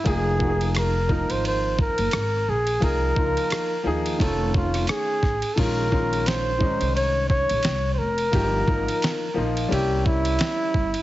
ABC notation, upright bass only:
X:1
M:4/4
L:1/16
Q:"Swing 16ths" 1/4=87
K:Bbm
V:1 name="Upright bass" clef=bass
F,,,6- F,,, A,,,4 G,,, A,,,2 B,,,2 | C,,2 D,, z3 E,,2 F,,,4 z2 =A,,, z | B,,,6- B,,, C,,4 B,,, C,,2 F,,,2 | =G,,,2 A,,, z3 B,,,2 C,,4 z2 G,,, z |]